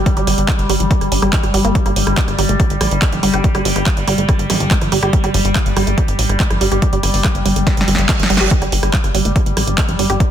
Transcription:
Already playing: G3
0.06 G3, kick, closed hi-hat
0.17 G1 G3, closed hi-hat
0.27 G1 G3, cross-stick, open hi-hat
0.38 G1, closed hi-hat
0.48 G3, kick, cross-stick, clap, closed hi-hat
0.59 G1, closed hi-hat
0.69 G1 G3, open hi-hat
0.80 G1 F3, closed hi-hat
0.91 kick, closed hi-hat
1.01 G1, cross-stick, closed hi-hat
1.12 G1 D4, open hi-hat
1.22 G1 G3, cross-stick, closed hi-hat
1.33 F3, kick, clap, closed hi-hat
1.43 G1 G3, cross-stick, closed hi-hat
1.54 G1 G3, open hi-hat
1.65 G1 A#3, closed hi-hat
1.75 G3, kick, closed hi-hat
1.86 G1 G3, cross-stick, closed hi-hat
1.96 G1 G3, open hi-hat
2.07 G1, cross-stick, closed hi-hat
2.17 G3, kick, clap, closed hi-hat
2.28 G1, cross-stick, closed hi-hat
2.39 G1 G3, open hi-hat
2.49 G1 A3, closed hi-hat
2.60 kick, cross-stick, closed hi-hat
2.70 G1, closed hi-hat
2.81 A1 G3, cross-stick, open hi-hat
2.91 G1, closed hi-hat
3.02 A3, kick, cross-stick, clap, closed hi-hat
3.12 G1 F3, closed hi-hat
3.23 G1 G3, open hi-hat
3.34 G1 G4, cross-stick, closed hi-hat
3.44 G3, kick, closed hi-hat
3.55 G1 G3, cross-stick, closed hi-hat
3.65 G1 G3, open hi-hat
3.76 G1, cross-stick, closed hi-hat
3.86 G3, kick, clap, closed hi-hat
3.97 G1, closed hi-hat
4.08 G1 G3, cross-stick, open hi-hat
4.18 G1 A3, closed hi-hat
4.29 kick, cross-stick, closed hi-hat
4.39 G1, closed hi-hat
4.50 A1 G3, cross-stick, open hi-hat, zap
4.60 G1, closed hi-hat
4.71 A3, kick, clap, closed hi-hat
4.81 G1 F3, cross-stick, closed hi-hat
4.92 G1 G3, open hi-hat
5.03 G1 G4, cross-stick, closed hi-hat
5.13 G3, kick, closed hi-hat
5.24 G1 G3, cross-stick, closed hi-hat
5.34 G1 G3, open hi-hat
5.45 G1, closed hi-hat
5.55 G3, kick, cross-stick, clap, closed hi-hat
5.66 G1, closed hi-hat
5.77 G1 G3, cross-stick, open hi-hat
5.87 G1 A3, closed hi-hat
5.98 kick, cross-stick, closed hi-hat
6.08 G1, closed hi-hat
6.19 A1 G3, open hi-hat
6.29 G1, cross-stick, closed hi-hat
6.40 A3, kick, clap, closed hi-hat
6.50 G1 F3, cross-stick, closed hi-hat
6.61 G1 G3, open hi-hat
6.72 G1 G4, cross-stick, closed hi-hat
6.82 G3, kick, closed hi-hat
6.93 G1 G3, closed hi-hat
7.03 G1 G3, cross-stick, open hi-hat
7.14 G1, open hi-hat
7.24 G3, kick, cross-stick, clap, closed hi-hat
7.35 G1, closed hi-hat
7.46 G1 G3, open hi-hat
7.56 G1 A3, closed hi-hat
7.67 kick, snare, closed hi-hat, reverse cymbal
7.77 G1, snare, closed hi-hat
7.88 G1 G3, open hi-hat
7.95 G1, snare, closed hi-hat
8.09 A3, kick, snare, clap, closed hi-hat
8.19 G1 F3, snare, closed hi-hat
8.30 G1 G3, open hi-hat
8.37 G1 G4, snare, closed hi-hat
8.51 G3, kick, closed hi-hat
8.62 G1 G3, cross-stick, closed hi-hat
8.72 G1 G3, open hi-hat
8.83 G1, cross-stick, closed hi-hat
8.93 G3, kick, clap, closed hi-hat
9.04 G1, cross-stick, closed hi-hat
9.15 G1 G3, open hi-hat
9.25 G1 A3, closed hi-hat
9.36 kick, cross-stick, closed hi-hat
9.46 G1, closed hi-hat
9.57 A1 G3, cross-stick, open hi-hat
9.67 G1, closed hi-hat
9.78 A3, kick, cross-stick, clap, closed hi-hat
9.89 G1 F3, closed hi-hat
9.99 G1 G3, open hi-hat
10.10 G1 G4, cross-stick, closed hi-hat
10.20 G3, kick, closed hi-hat

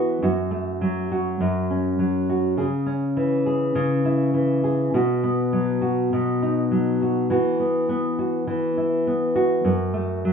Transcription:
Already playing: E3 B3 E4 F#4
0.22 F#2 F#4
0.51 A3
0.81 F#3
1.12 F#4
1.40 F#2
1.70 C#4
1.99 F#3
2.29 F#4
2.57 C#3 G#4
2.86 C#4
3.17 E3
3.46 G#4
3.75 C#3
4.05 E4
4.34 E3
4.64 G#4
4.94 B2 F#4
5.24 B3
5.53 F#3
5.82 F#4
6.13 B2
6.42 D#4
6.71 F#3
7.02 F#4
7.30 E3 F#4
7.60 B3
7.89 B3
8.19 F#4
8.47 E3
8.78 E4
9.07 B3
9.35 F#4
9.65 F#2
9.94 A3
10.25 F#3

